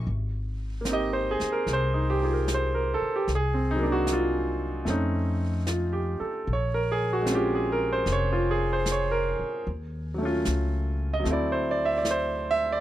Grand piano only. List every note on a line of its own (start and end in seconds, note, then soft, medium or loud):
0.81 3.25 A#3 soft
0.81 3.27 C4 soft
0.89 1.92 D#4 soft
0.89 2.08 G4 medium
0.89 1.16 D#5 medium
1.13 1.40 C5 medium
1.31 1.48 G#4 medium
1.52 1.66 A#4 medium
1.73 1.96 C5 medium
1.94 2.20 D#4 soft
2.10 2.28 G4 medium
2.22 3.28 D#4 soft
2.22 3.28 F4 soft
2.22 3.29 G#4 soft
2.33 2.46 A#4 soft
2.54 2.77 C5 medium
2.75 3.01 A#4 medium
2.94 3.10 A4 medium
3.16 3.28 G4 medium
3.35 3.58 G#4 medium
3.54 3.80 C4 soft
3.71 3.85 D#4 medium
3.76 4.85 F#3 medium
3.76 4.86 A#3 soft
3.83 4.88 D4 medium
3.83 4.88 D#4 medium
3.92 4.06 F#4 medium
4.13 4.44 F4 medium
4.85 6.45 A3 soft
4.85 6.47 C4 soft
4.85 6.47 C#4 soft
4.90 6.48 D#4 medium
5.68 6.18 F4 soft
5.93 6.34 G4 soft
6.20 6.61 A4 soft
6.53 6.76 C#5 medium
6.74 7.00 A#4 medium
6.92 7.08 G#4 medium
7.13 7.26 F#4 medium
7.22 9.63 G#3 soft
7.22 9.64 C4 soft
7.29 9.66 C#4 soft
7.29 8.31 F4 soft
7.35 7.57 G4 medium
7.55 7.80 G#4 medium
7.72 7.89 A#4 medium
7.93 8.05 C5 medium
8.13 8.35 C#5 medium
8.33 8.58 F4 medium
8.51 8.67 G#4 medium
8.73 8.85 C5 medium
8.92 9.15 C#5 medium
9.11 9.28 A#4 medium
10.14 11.18 F#3 soft
10.14 11.22 A3 soft
10.21 11.26 C#4 soft
10.21 11.28 F4 medium
11.14 11.25 D#5 medium
11.20 12.80 F#3 soft
11.24 12.80 A3 soft
11.24 12.80 C4 soft
11.31 12.80 E4 medium
11.31 11.55 D5 medium
11.52 11.78 C5 medium
11.71 11.74 D5 medium
11.85 12.00 E5 medium
11.98 12.06 D5 medium
12.11 12.61 C5 medium
12.51 12.68 E5 loud
12.72 12.80 D5 medium